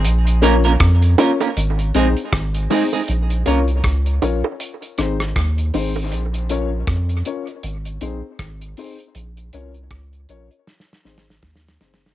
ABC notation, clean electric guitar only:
X:1
M:4/4
L:1/16
Q:"Swing 16ths" 1/4=79
K:Bbm
V:1 name="Clean electric guitar"
z2 [B,DFB] [B,DFB] z2 [B,DFB] [B,DFB] z2 [A,CEA] z3 [A,CEA] [A,CEA] | z2 [B,DFB] z12 z | z16 | z16 |]